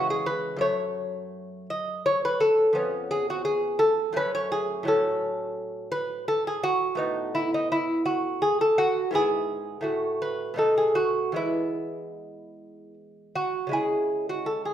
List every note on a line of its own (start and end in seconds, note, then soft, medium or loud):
0.00 0.59 C#3 medium
0.00 0.58 E3 medium
0.00 0.61 G#3 soft
0.10 0.28 G#4 medium
0.26 0.60 B4 loud
0.57 2.70 F#2 medium
0.57 2.71 F#3 medium
0.61 2.73 A3 medium
0.61 1.66 C#5 medium
1.70 2.05 D#5 medium
2.06 2.24 C#5 loud
2.25 2.43 B4 medium
2.40 3.09 A4 medium
2.73 4.10 F2 medium
2.73 4.11 B3 medium
2.73 4.11 C#4 medium
3.11 3.29 G#4 loud
3.30 3.44 F#4 medium
3.45 3.79 G#4 medium
3.79 4.14 A4 loud
4.13 4.84 F#2 medium
4.13 4.84 A3 medium
4.13 4.86 C#4 medium
4.17 4.34 B4 loud
4.35 4.51 C#5 loud
4.52 4.86 G#4 loud
4.83 6.93 A2 medium
4.83 6.94 F#3 medium
4.87 6.95 C#4 medium
4.87 5.90 A4 medium
5.92 6.26 B4 loud
6.28 6.46 A4 loud
6.47 6.64 G#4 medium
6.63 7.32 F#4 loud
6.95 9.08 A2 medium
6.95 9.09 B3 medium
6.95 7.53 D#4 medium
7.35 7.52 E4 medium
7.54 7.71 D#4 medium
7.72 8.05 E4 medium
8.06 8.40 F#4 medium
8.42 8.60 G#4 loud
8.61 8.79 A4 medium
8.78 9.13 F#4 loud
9.11 9.80 G#2 medium
9.11 9.82 B3 medium
9.11 9.83 E4 medium
9.15 10.18 G#4 loud
9.81 10.53 A2 medium
9.81 10.55 A3 medium
9.81 10.56 F#4 soft
10.22 10.58 B4 medium
10.54 11.33 B2 medium
10.54 11.33 A3 medium
10.54 10.95 D#4 medium
10.58 10.77 A4 medium
10.78 10.97 G#4 medium
10.95 11.35 F#4 medium
11.32 13.66 E3 medium
11.32 13.68 G#3 medium
11.32 13.70 B3 medium
11.36 12.94 E4 medium
13.36 13.72 F#4 medium
13.67 14.74 C#3 medium
13.67 14.74 G#3 medium
13.71 14.74 E4 soft
13.71 14.27 G#4 medium
14.29 14.48 F#4 medium
14.46 14.65 A4 medium
14.65 14.74 G#4 medium